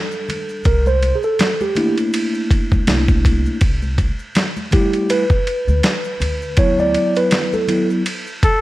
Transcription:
Already playing: tine electric piano G3 D4 A4
0.11 maracas
0.29 ride, high conga, low conga, maracas
0.49 maracas
0.64 upright bass C2, tine electric piano A#4, kick, ride, maracas
0.86 tine electric piano C5, high conga, maracas
1.02 ride, high conga, maracas
1.15 tine electric piano G#4
1.23 tine electric piano A4, maracas
1.39 snare, hi-hat pedal, ride, low conga, maracas
1.61 tine electric piano G4, high conga, maracas
1.75 tine electric piano A3 A#3 D4 E4, ride, low conga, maracas
1.98 ride, maracas
2.13 ride, maracas
2.34 maracas
2.51 kick, ride, maracas
2.72 upright bass D2, kick, high conga, maracas
2.87 upright bass C2, tine electric piano A3 A#3 D4 E4, snare, hi-hat pedal, ride, maracas
3.08 kick, maracas
3.25 kick, ride, high conga, low conga, maracas
3.46 maracas
3.61 upright bass C2, kick, ride, maracas
3.82 high conga, maracas
3.98 kick, ride, high conga, maracas
4.19 maracas
4.35 snare, hi-hat pedal, ride, low conga, maracas
4.57 high conga, maracas
4.71 tine electric piano G3 A3 E4 G4, kick, ride, low conga, maracas
4.93 ride, maracas
5.09 tine electric piano B4, ride, maracas
5.30 kick, maracas
5.47 ride, maracas
5.67 upright bass D2, high conga, maracas
5.83 snare, hi-hat pedal, ride, maracas
6.04 maracas
6.20 upright bass D2, ride, high conga, low conga, maracas
6.42 maracas
6.57 tine electric piano F#3 B3 E4 C#5, kick, ride, maracas
6.79 tine electric piano D5, high conga, maracas
6.94 ride, high conga, maracas
7.15 tine electric piano B4, ride, maracas
7.31 snare, hi-hat pedal, ride, low conga, maracas
7.53 tine electric piano A4, high conga, maracas
7.68 tine electric piano F#3 B3 E4, ride, low conga, maracas
7.90 maracas
8.06 ride, maracas
8.27 maracas
8.43 flugelhorn A4, kick, ride, maracas

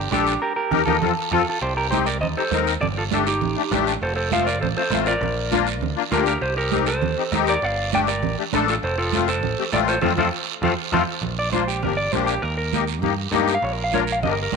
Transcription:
Already playing: clean electric guitar D4 G4
0.11 picked electric bass A#1, accordion D4 G4 A4, clean electric guitar D4 G4, high conga, short guiro
0.27 short guiro
0.42 clean electric guitar G4 A#4
0.56 clean electric guitar G4 A#4
0.71 picked electric bass D#2, accordion D#4 G4 A#4, low conga, long guiro
0.85 picked electric bass D#2, accordion D#4 G4 A#4, clean electric guitar F4 A4, low conga, long guiro
1.01 picked electric bass F2, accordion C4 F4 A4, low conga, long guiro
1.31 picked electric bass F2, accordion C4 F4 A4, clean electric guitar F4 A4, low conga, long guiro
1.49 clean electric guitar F4 A4
1.61 picked electric bass C2, clean electric guitar G4 C5, high conga, long guiro
1.77 clean electric guitar G4 A#4
1.90 accordion C4 D#4 G4, clean electric guitar G4 C5, high conga, short guiro
2.06 clean electric guitar A#4 D5, short guiro
2.21 picked electric bass D#2, clean electric guitar C5 D#5, high conga, low conga, long guiro
2.37 accordion C4 D#4 G4, clean electric guitar A4 C5
2.51 picked electric bass D#2, accordion C4 D#4 A#4, high conga, short guiro
2.67 short guiro
2.81 picked electric bass G1, clean electric guitar A4 D5, high conga, low conga, long guiro
2.98 clean electric guitar F4 A4
3.11 accordion A3 D4 G4, clean electric guitar D4 A4, high conga, short guiro
3.27 clean electric guitar D#4 G4, short guiro
3.41 picked electric bass A1, high conga, low conga, long guiro
3.56 accordion A3 D4 G4
3.71 picked electric bass A1, accordion A3 D4 G4, high conga, short guiro
3.87 short guiro
4.01 picked electric bass F1, clean electric guitar A4 C5, high conga, long guiro
4.16 clean electric guitar A4 C5
4.32 accordion A3 C4 F4, clean electric guitar C5 F5, high conga, short guiro
4.46 clean electric guitar A#4 D5, short guiro
4.61 picked electric bass A1, clean electric guitar A4 C5, high conga, low conga, long guiro
4.77 accordion A3 C4 F4, clean electric guitar A4 C5
4.90 picked electric bass A1, accordion A3 C4 F4, high conga, short guiro
5.06 clean electric guitar A#4 D5, short guiro
5.21 picked electric bass A#1, high conga, low conga, long guiro
5.51 accordion A#3 D4 F4, high conga, short guiro
5.67 short guiro
5.81 picked electric bass D2, high conga, low conga, long guiro
5.96 accordion A#3 D4 F4
6.11 picked electric bass D2, accordion A#3 D4 G4, clean electric guitar F4 A#4, high conga, short guiro
6.26 clean electric guitar G4 A#4, short guiro
6.41 picked electric bass C2, clean electric guitar G4 C5, high conga, long guiro
6.57 clean electric guitar G4 A#4
6.72 accordion C4 D#4 G4, high conga, short guiro
6.86 clean electric guitar A4 C5, short guiro
7.01 picked electric bass D#2, high conga, low conga, long guiro
7.18 accordion C4 D#4 G4
7.32 picked electric bass D#2, accordion C4 D#4 G4, high conga, short guiro
7.47 clean electric guitar A#4 D5, short guiro
7.62 picked electric bass G1, clean electric guitar D5 F5, high conga, long guiro
7.92 accordion A3 D4 G4, clean electric guitar D5 G5, high conga, short guiro
8.07 clean electric guitar A#4 D5, short guiro
8.22 picked electric bass A1, high conga, low conga, long guiro
8.38 accordion A3 D4 G4
8.53 picked electric bass A1, accordion A3 D4 A4, clean electric guitar D4 A4, high conga, short guiro
8.68 clean electric guitar F4 A4, short guiro
8.83 picked electric bass F1, clean electric guitar A4 C5, high conga, long guiro
8.98 clean electric guitar F4 A4
9.13 accordion A3 C4 F4, high conga, short guiro
9.28 clean electric guitar A4 C5, short guiro
9.42 picked electric bass A1, high conga, low conga, long guiro
9.59 accordion A3 C4 G4
9.72 picked electric bass A1, accordion A3 C4 F4, clean electric guitar A4 D5, high conga, short guiro
9.88 clean electric guitar A4 C5, short guiro
10.01 picked electric bass F2, accordion A3 C4 F4, clean electric guitar F4 A4 C5, low conga, long guiro
10.17 picked electric bass F2, accordion A3 C4 F4, clean electric guitar F4 A4 C5, low conga, long guiro
10.62 picked electric bass F2, accordion A3 C4 F4, clean electric guitar F4 A4 C5, low conga, long guiro
10.92 picked electric bass F2, accordion A3 C4 F4, clean electric guitar F4 A4 C5, low conga, long guiro
11.22 picked electric bass A#1, low conga, long guiro
11.39 clean electric guitar D5
11.53 accordion A#3 D4 F4, clean electric guitar C5, high conga, short guiro
11.68 clean electric guitar G4, short guiro
11.82 picked electric bass G1, accordion A#3 D4 G4, clean electric guitar A#4, low conga, long guiro
11.97 clean electric guitar D5
12.12 picked electric bass A#1, accordion A#3 D4 G4, clean electric guitar C5, high conga, short guiro
12.26 clean electric guitar G4, short guiro
12.42 picked electric bass D#2, clean electric guitar A#4, long guiro
12.57 clean electric guitar A#4
12.72 accordion A#3 D#4 G4, high conga, short guiro
12.87 short guiro
13.01 picked electric bass G2, accordion A#3 D#4 G4, low conga, long guiro
13.32 picked electric bass G2, accordion A#3 D#4 G4, high conga, short guiro
13.48 short guiro
13.55 clean electric guitar F5
13.62 picked electric bass A#1, clean electric guitar C#5, long guiro
13.73 clean electric guitar A#4
13.84 clean electric guitar F5
13.92 accordion D4 F4 A#4, clean electric guitar C#5, high conga, short guiro
14.04 clean electric guitar A#4, short guiro
14.12 clean electric guitar F5
14.22 picked electric bass G1, accordion D4 G4 A#4, clean electric guitar D#5, low conga, long guiro
14.32 clean electric guitar A#4
14.43 clean electric guitar A#4
14.52 accordion D4 G4, high conga

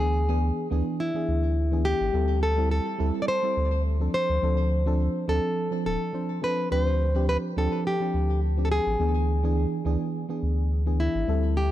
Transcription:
Already playing: sub bass D2, fm electric piano E3 B3 D4 G#4, nylon-string guitar G#4
0.28 fm electric piano E3 B3 D4 G#4
0.70 sub bass D2, fm electric piano E3 B3 D4 G#4
1.00 nylon-string guitar E4
1.14 fm electric piano E3 B3 D4 G#4
1.28 sub bass D2
1.71 fm electric piano E3 B3 D4 G#4
1.85 nylon-string guitar G4
2.00 sub bass G#1
2.13 sub bass D2, fm electric piano G3 C4 E4 A4
2.43 nylon-string guitar A4
2.57 fm electric piano G3 C4 E4 A4
2.71 nylon-string guitar A4
2.98 sub bass D2, fm electric piano G3 C4 E4 A4
3.22 nylon-string guitar D5
3.28 nylon-string guitar C5
3.43 fm electric piano G3 C4 E4 A4
3.57 sub bass D2
4.00 fm electric piano F3 C4 D4 A4
4.14 nylon-string guitar C5
4.29 sub bass D2
4.42 sub bass D2, fm electric piano F3 C4 D4 A4
4.86 fm electric piano F3 C4 D4 A4
5.28 sub bass D2, fm electric piano F3 C4 D4 A4, nylon-string guitar A4
5.71 fm electric piano F3 C4 D4 A4
5.86 sub bass D1, nylon-string guitar A4
6.13 fm electric piano F3 C4 D4 C5
6.42 fm electric piano F3 C4 D4 C5, nylon-string guitar B4
6.71 sub bass D2, fm electric piano F3 C4 D4 G4, nylon-string guitar B4
6.83 nylon-string guitar C5
7.14 fm electric piano F3 C4 D4 G4
7.29 nylon-string guitar B4
7.56 sub bass D2, fm electric piano F3 C4 D4 G4, nylon-string guitar A4
7.87 nylon-string guitar G4
8.00 fm electric piano F3 C4 D4 G4
8.14 sub bass D2
8.57 fm electric piano F3 C4 D4 G4
8.65 nylon-string guitar A4
8.72 nylon-string guitar G#4
8.86 sub bass A1
8.99 sub bass D2, fm electric piano E3 B3 D4 G#4
9.43 fm electric piano E3 B3 D4 G#4
9.85 sub bass D2, fm electric piano E3 B3 D4 G#4
10.29 fm electric piano E3 B3 D4 G#4
10.43 sub bass D2
10.86 fm electric piano E3 B3 D4 G#4
11.00 nylon-string guitar E4
11.15 sub bass G#1
11.28 sub bass D2, fm electric piano G3 C4 E4 A4
11.57 nylon-string guitar G4

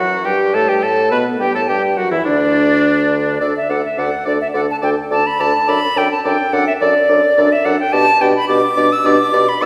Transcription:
Already playing: bassoon F#2, french horn F#3, clarinet F#4, oboe F#4, flute F#5
0.24 bassoon G2, french horn G3, clarinet G4, oboe G4, flute G5
0.53 bassoon A2, french horn A3, clarinet A4, oboe A4, flute A5
0.68 bassoon G2, french horn G3, clarinet G4, oboe G4, flute G5
0.83 bassoon A2, french horn A3, clarinet A4, oboe A4, flute A5
1.11 bassoon B2, french horn B3, oboe B4, clarinet B4, flute B5
1.40 bassoon G2, french horn G3, oboe G4, clarinet G4, flute G5
1.54 bassoon A2, french horn A3, clarinet A4, oboe A4, flute A5
1.68 bassoon G2, french horn G3, clarinet G4, oboe G4, flute G5
1.97 bassoon F#2, french horn F#3, clarinet F#4, oboe F#4, flute F#5
2.11 bassoon E2, french horn E3, oboe E4, clarinet E4, flute E5
2.25 bassoon D2, french horn D3, oboe D4, clarinet D4, flute D5
3.40 bassoon D2, french horn D4, clarinet A4, oboe D5, flute D5
3.57 flute E5
3.69 bassoon D2, french horn D4, clarinet A4, oboe D5, flute F#5
3.84 flute E5
3.97 bassoon D2, french horn D4, clarinet A4, oboe D5, flute F#5
4.25 bassoon D2, french horn D4, clarinet A4, oboe D5, flute D5
4.41 flute E5
4.54 bassoon D2, french horn D4, clarinet A4, oboe D5, flute F#5
4.71 flute A5
4.82 bassoon D2, french horn D4, clarinet A4, oboe D5, flute G5
5.11 bassoon D2, french horn D4, clarinet A4, oboe D5, flute A5
5.27 flute B5
5.39 bassoon D2, french horn D4, clarinet A4, oboe D5, flute A5
5.68 bassoon F#2, french horn D4, clarinet A4, oboe D5, flute B5
5.96 bassoon F#2, french horn D4, clarinet A4, oboe D5, flute G5
6.12 flute A5
6.25 bassoon F#2, french horn D4, clarinet A4, oboe D5, flute G5
6.53 bassoon F#2, french horn D4, clarinet A4, oboe D5, flute F#5
6.67 flute E5
6.81 bassoon F#2, french horn D4, clarinet A4, flute D5, oboe D5
7.09 bassoon F#2, french horn D4, clarinet A4, oboe D5
7.37 bassoon F#2, french horn D4, clarinet A4, oboe D5
7.52 flute E5
7.64 bassoon F#2, french horn D4, clarinet A4, oboe D5, flute F#5
7.80 flute G5
7.93 bassoon B2, french horn D4, clarinet G4, oboe D5, flute A5
8.20 bassoon B2, french horn D4, clarinet G4, oboe D5, flute G5
8.36 flute B5
8.48 bassoon B2, french horn D4, clarinet G4, oboe D5, flute D6
8.76 bassoon B2, french horn D4, clarinet G4, oboe D5
8.92 flute E6
9.04 bassoon B2, french horn D4, clarinet G4, oboe D5, flute D6
9.32 bassoon B2, french horn D4, clarinet G4, oboe D5
9.49 flute B5
9.61 bassoon B2, french horn D4, clarinet G4, oboe D5, flute E6

